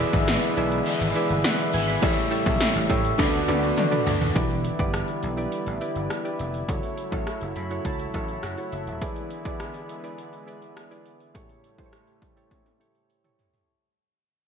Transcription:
Already playing: E2 B2 D3 E3 G#3 B3 E4
0.00 G#4 B4 D5 E5
0.13 G#1, kick, closed hi-hat
0.28 snare, closed hi-hat, tambourine, cowbell
0.42 closed hi-hat
0.57 B1 E4 G#4 B4 D5 E5, closed hi-hat
0.72 closed hi-hat
0.85 E2 B2 E3, closed hi-hat, cowbell
1.01 G#1, closed hi-hat
1.15 E4 G#4 B4 D5 E5, closed hi-hat
1.30 G1, closed hi-hat
1.44 F#5, snare, closed hi-hat, tambourine, cowbell
1.59 closed hi-hat
1.73 G#1 B2 E3 B4 G#5, open hi-hat
1.88 D5 B5, closed hi-hat
2.01 A1 A2 C#3 E3 G3 A3 E4 G4 A4 C#5 E5, kick, closed hi-hat, cowbell
2.06 A3
2.17 closed hi-hat
2.31 E4 G4 A4 C#5 E5, closed hi-hat
2.46 B1, kick, closed hi-hat
2.61 snare, closed hi-hat, tambourine, cowbell
2.75 A1, closed hi-hat
2.89 A2 E4 G4 A4 C#5 E5, kick, closed hi-hat
3.05 closed hi-hat
3.18 D2 D3 A3 B3 D4 F#4 A4 B4 D5, kick, snare, closed hi-hat, cowbell
3.34 closed hi-hat
3.47 D2 D4 F#4 A4 B4 D5, closed hi-hat, high tom
3.63 closed hi-hat
3.77 D3, closed hi-hat, mid tom, cowbell
3.91 D4 F#4 A4 B4 D5, closed hi-hat, mid tom
4.06 D2 A3 D4, closed hi-hat, floor tom
4.21 D#2, closed hi-hat, floor tom
4.35 E1 D3 E3 G3 B3 E4 G4 B4 D5, kick, closed hi-hat
4.50 closed hi-hat
4.64 closed hi-hat
4.79 G1 E4 G4 B4 D5, kick, closed hi-hat
4.94 cross-stick, closed hi-hat
5.08 closed hi-hat
5.23 B1, closed hi-hat
5.37 E4 G4 B4 D5, closed hi-hat
5.52 closed hi-hat
5.67 A1, closed hi-hat
5.81 E4 G4 B4 D5, closed hi-hat
5.96 G1, closed hi-hat
6.10 cross-stick, closed hi-hat
6.24 E4 G4 B4 D5, closed hi-hat
6.39 F1, closed hi-hat
6.54 closed hi-hat
6.68 F#1 C#3 F#3 A3 E4 F#4 A4 C#5, kick, closed hi-hat
6.83 closed hi-hat
6.97 closed hi-hat
7.11 A1 E4 F#4 A4 C#5, kick, closed hi-hat
7.27 cross-stick, closed hi-hat
7.41 F#1, closed hi-hat
7.56 F#2 B5, closed hi-hat
7.70 E4 F#4 A4 C#5, closed hi-hat
7.85 C#2 A5, kick, closed hi-hat
7.99 closed hi-hat
8.14 A1 E4 F#4 A4 C#5, kick, closed hi-hat
8.28 closed hi-hat
8.43 F#2 F#5, cross-stick, closed hi-hat
8.57 E4 F#4 A4 C#5, closed hi-hat
8.72 F#1 E5, closed hi-hat
8.87 D#1, closed hi-hat
9.01 D3 E3 G#3 B3 E4 G#4 B4 D5, kick, closed hi-hat
9.16 closed hi-hat
9.31 closed hi-hat
9.45 E4 G#4 B4 D5, kick, closed hi-hat
9.60 cross-stick, closed hi-hat
9.74 closed hi-hat
9.89 closed hi-hat
10.03 E4 G#4 B4 D5, closed hi-hat
10.18 closed hi-hat
10.33 closed hi-hat
10.46 E4 G#4 B4 D5, closed hi-hat
10.62 closed hi-hat
10.77 cross-stick, closed hi-hat
10.90 E4 G#4 B4 D5, closed hi-hat
11.06 closed hi-hat
11.20 closed hi-hat
11.34 A2 C#3 G3 A3 E4 G4 A4 C#5, kick, closed hi-hat
11.49 closed hi-hat
11.64 closed hi-hat
11.78 E4 G4 A4 C5, kick, closed hi-hat
11.86 C#5
11.93 cross-stick, closed hi-hat
12.07 closed hi-hat
12.22 kick, closed hi-hat
12.36 E4 G4 A4 C#5, closed hi-hat
12.51 kick, closed hi-hat, high tom
12.66 closed hi-hat, high tom
12.80 E4 G4 A4 C#5, closed hi-hat
12.95 closed hi-hat
13.10 closed hi-hat
13.24 E4 G4 A4 C#5, closed hi-hat, mid tom
13.39 closed hi-hat, floor tom
13.54 closed hi-hat, floor tom

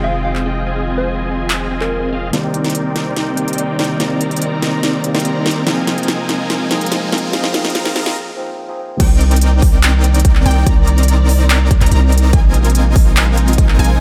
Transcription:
Already playing: F1 D#3 F3 G#3 C4 D#4 F4 G#4 D#5 G5
0.04 F5
0.25 F5
0.35 clap
0.46 C4 F4 G#4 D#5 G5
0.67 C4 F4 G#4 D#5 G#5
0.98 C5
1.50 finger snap, clap
1.71 C4 F4 G#4 D#5 G#5
1.81 A#4, clap
2.12 C4 F4 G#4 D#5 F5
2.31 C2 C3 D#3 A#3 C4 D#4 A#4 D5 G5, snare, closed hi-hat, riser
2.35 G4
2.54 closed hi-hat
2.64 snare, closed hi-hat
2.70 closed hi-hat
2.75 closed hi-hat
2.96 snare, closed hi-hat
3.16 snare, closed hi-hat
3.35 D#3 A#3 C4 D5, closed hi-hat
3.39 G4
3.48 closed hi-hat
3.53 closed hi-hat
3.58 closed hi-hat
3.79 C2 C4 D#4 A#4 D5 G5, snare, closed hi-hat
3.84 closed hi-hat
3.98 C2 D#3 A#3 C4 D#4 A#4 D5 A#5, snare, closed hi-hat
4.02 G4
4.21 closed hi-hat
4.31 closed hi-hat
4.36 closed hi-hat
4.42 closed hi-hat
4.62 snare, closed hi-hat
4.83 snare, closed hi-hat
5.02 D#3 A#3 C4 G4 D5, closed hi-hat
5.15 C2 C4 D#4 A#4 D5 A#5, snare, closed hi-hat
5.20 closed hi-hat
5.25 C2 C4 D#4 A#4 D5 A#5, closed hi-hat
5.46 snare, closed hi-hat
5.51 closed hi-hat
5.65 A#1 F3 G#3 A#3 C4 D#4 F4 A#4 D#5 G#5, snare, closed hi-hat
5.69 G#4
5.87 snare, closed hi-hat
5.98 closed hi-hat
6.03 closed hi-hat
6.08 snare, closed hi-hat
6.29 snare, closed hi-hat
6.50 snare, closed hi-hat
6.69 F3 A#3 C4 D#4, snare, closed hi-hat
6.73 G#4
6.81 closed hi-hat
6.86 closed hi-hat
6.92 snare, closed hi-hat
7.12 A#1 C4 F4 A#4 D#5 G#5, snare, closed hi-hat
7.18 closed hi-hat
7.31 A#1 F3 A#3 C4 D#4 F4 G#4 A#4 D#5 A#5, snare, closed hi-hat
7.44 snare
7.54 snare, closed hi-hat
7.65 snare, closed hi-hat
7.70 closed hi-hat
7.75 snare, closed hi-hat
7.85 snare
7.96 snare, closed hi-hat
8.06 snare
8.36 F3 A#3 C4 D#4 A#4
8.68 F3 A#3 C4 D#4 G#4
9.00 C2 C3 D#3 A#3 C4 D#4 A#4 D5 G5, kick, closed hi-hat, crash
9.21 closed hi-hat
9.31 closed hi-hat
9.36 closed hi-hat
9.41 closed hi-hat
9.62 kick, open hi-hat
9.83 clap, closed hi-hat
10.04 closed hi-hat
10.14 closed hi-hat
10.20 closed hi-hat
10.25 kick, closed hi-hat
10.35 clap
10.46 C2 C4 D#4 A#4 D5 G5, closed hi-hat
10.51 closed hi-hat
10.66 C2 C4 D#4 A#4 D5 A#5, kick, closed hi-hat
10.87 closed hi-hat
10.98 closed hi-hat
11.03 closed hi-hat
11.08 closed hi-hat
11.29 open hi-hat
11.50 clap, closed hi-hat
11.71 kick, closed hi-hat
11.81 C2 C4 D#4 A#4 D5 A#5, clap, closed hi-hat
11.86 closed hi-hat
11.91 C2 C4 D#4 A#4 D5 A#5, closed hi-hat
12.12 closed hi-hat
12.18 closed hi-hat
12.33 A#1 G#3 C4 D#4 F4 A#4 G#5, kick, closed hi-hat
12.54 closed hi-hat
12.65 closed hi-hat
12.70 closed hi-hat
12.75 closed hi-hat
12.96 kick, open hi-hat
13.17 clap, closed hi-hat
13.37 closed hi-hat
13.48 closed hi-hat
13.53 closed hi-hat
13.58 kick, closed hi-hat
13.69 clap
13.79 A#1 C4 F4 A#4 D#5 G#5, closed hi-hat
13.84 closed hi-hat

